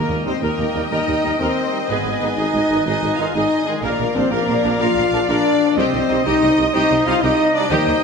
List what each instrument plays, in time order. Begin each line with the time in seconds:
Already playing: harp D#3 D#5, french horn section A#3, trumpet A#3, violin section A#4 D#5 G5, flute section A#4, viola section D#5
0.01 harp G3
0.09 tuba D#2, cello section D#2, double bass section D#2, harp D#4, viola section A#4
0.19 harp D#5
0.24 tuba D#2, cello section D#2, double bass section D#2, trombone section G3 D#4, french horn section C4, trumpet C4, harp G4, viola section A#4, flute section C5, violin section C5
0.35 harp D#5
0.41 tuba D#2, cello section D#2, double bass section D#2, french horn section A#3, trumpet A#3, flute section A#4, viola section A#4, violin section A#4, harp D#6
0.52 harp G5
0.59 tuba D#2, cello section D#2, double bass section D#2, viola section A#4
0.68 harp D#5
0.74 tuba D#2, double bass section D#2, cello section D#2, trombone section G3 D#4, harp D#4, viola section A#4
0.83 harp G3
0.90 tuba D#2, cello section D#2, double bass section D#2, harp D#3, french horn section D#4, trumpet D#4, clarinet A#4, viola section A#4, flute section D#5, violin section D#5
0.99 harp D#4
1.07 cello section D#2, tuba D#2, double bass section D#2, harp G3, viola section A#4
1.16 harp D#5
1.23 tuba D#2, cello section D#2, double bass section D#2, trombone section G3 D#4, harp G4, viola section A#4
1.31 harp D#5
1.38 tuba D#2, cello section D#2, double bass section D#2, french horn section C4, trumpet C4, viola section A#4, violin section C5, flute section C5, harp D#6
1.71 trombone section G3 D#4
1.81 harp G3
1.86 tuba G#1, double bass section G#1, cello section G#2, french horn section B3, trumpet B3, clarinet G#4, flute section B4, violin section G#5
1.90 harp G#2, viola section G#4, violin section B4
1.97 harp D#3
2.05 tuba G#1, double bass section G#1, cello section G#2, harp G#3, viola section G#4
2.14 harp D#4
2.20 tuba G#1, double bass section G#1, cello section G#2, trombone section D#3 D#4, viola section G#4, harp D#5
2.30 harp G#4
2.35 double bass section G#1, tuba G#1, cello section G#2, french horn section D#4, trumpet D#4, viola section G#4, clarinet B4, violin section D#5, flute section D#5, harp D#5
2.53 tuba G#1, double bass section G#1, cello section G#2, viola section G#4, harp D#5
2.69 tuba G#1, double bass section G#1, cello section G#2, trombone section D#3 D#4, viola section G#4
2.78 harp D#3
2.85 tuba G#1, double bass section G#1, cello section G#2, harp G#2, french horn section D#4, trumpet D#4, viola section G#4, flute section D#5, violin section D#5
2.94 harp G#3
3.02 tuba G#1, double bass section G#1, cello section G#2, harp D#3, viola section G#4
3.11 harp D#4
3.17 tuba G#1, double bass section G#1, cello section G#2, trombone section D#3 D#4, french horn section F4, trumpet F4, viola section G#4, harp D#5, violin section F5, flute section F5
3.27 harp G#4
3.34 tuba G#1, double bass section G#1, cello section G#2, french horn section D#4, trumpet D#4, viola section G#4, violin section D#5, flute section D#5, clarinet D#5, harp D#5
3.60 harp G#4
3.65 trombone section D#3 D#4, french horn section G#3, trumpet G#3, flute section G#4, violin section G#4
3.75 harp D#3
3.81 double bass section A#1, tuba A#1, cello section A#2, harp A#2, french horn section A#3, trumpet A#3, flute section A#4, violin section A#4, viola section A#4, clarinet D5
3.85 violin section D5 F5
3.91 harp A#3
3.99 tuba A#1, double bass section A#1, cello section A#2, harp F3, viola section A#4
4.08 harp D4
4.14 tuba A#1, double bass section A#1, cello section A#2, trombone section F3 D4, french horn section C4, trumpet C4, harp A#4, viola section A#4, flute section C5, violin section C5
4.24 harp F4
4.30 tuba A#1, double bass section A#1, cello section A#2, french horn section A#3, trumpet A#3, violin section A#4, viola section A#4, flute section A#4, harp D5
4.40 harp A#5
4.48 tuba A#1, double bass section A#1, cello section A#2, viola section A#4, harp D5
4.57 harp F4
4.62 double bass section A#1, tuba A#1, cello section A#2, trombone section F3 D4, harp D4, viola section A#4
4.73 harp A#3
4.79 double bass section A#1, tuba A#1, cello section A#2, harp A#2, french horn section F4, trumpet F4, viola section A#4, clarinet D5, flute section F5, violin section F5
4.90 harp F3
4.96 double bass section A#1, tuba A#1, cello section A#2, harp A#3, viola section A#4
5.06 harp D4
5.12 double bass section A#1, tuba A#1, cello section A#2, trombone section F3 D4, viola section A#4, harp A#4
5.22 harp F4
5.28 double bass section A#1, tuba A#1, cello section A#2, trumpet D4, french horn section D4, viola section A#4, violin section D5, flute section D5, harp D5
5.38 harp A#5
5.46 harp D5
5.54 harp F4
5.62 trombone section F3 D4, harp D4
5.71 harp A#3
5.77 double bass section C2, tuba C2, cello section C3, harp C3, trumpet C4, french horn section C4, viola section G4 D#5, violin section C5 D#5, flute section C5, clarinet D#5
5.86 harp G3
5.93 double bass section C2, tuba C2, cello section C3, harp C4, viola section G4
6.02 harp D#4
6.09 tuba C2, double bass section C2, cello section C3, trombone section G3 D#4, harp G4, viola section G4
6.18 harp C5
6.25 tuba C2, double bass section C2, cello section C3, french horn section D#4, trumpet D#4, viola section G4, flute section D#5, violin section D#5
6.35 harp G5
6.42 tuba C2, double bass section C2, cello section C3, viola section G4, harp D#5
6.51 harp C5
6.57 tuba C2, double bass section C2, cello section C3, trombone section G3 D#4, harp D#4, viola section G4
6.68 harp G3
6.73 tuba C2, double bass section C2, cello section C3, harp C3, trumpet D#4, french horn section D#4, viola section G4, clarinet C5, violin section D#5, flute section D#5
6.84 harp C4
6.91 tuba C2, double bass section C2, cello section C3, harp G3, viola section G4
7.05 double bass section C2, tuba C2, cello section C3, trombone section G3 D#4, french horn section F4, trumpet F4, viola section G4, harp G4, flute section F5, violin section F5
7.16 french horn section D#4, harp C5
7.21 double bass section C2, tuba C2, cello section C3, trumpet D#4, viola section G4, clarinet D#5, flute section D#5, violin section D#5, harp D#5
7.40 harp D#5
7.47 harp C5
7.52 french horn section D4, trumpet D4, trombone section D#4, violin section D5
7.56 trombone section G3, flute section D5
7.64 harp G3
7.69 tuba D#2, double bass section D#2, cello section D#3, harp D#3, trombone section G3 A#3, french horn section D#4, trumpet D#4, viola section G4 D#5, clarinet C5, flute section D#5, violin section D#5 G5
7.79 harp A#3
7.87 tuba D#2, double bass section D#2, cello section D#3, harp D#4, viola section G4
7.96 harp G4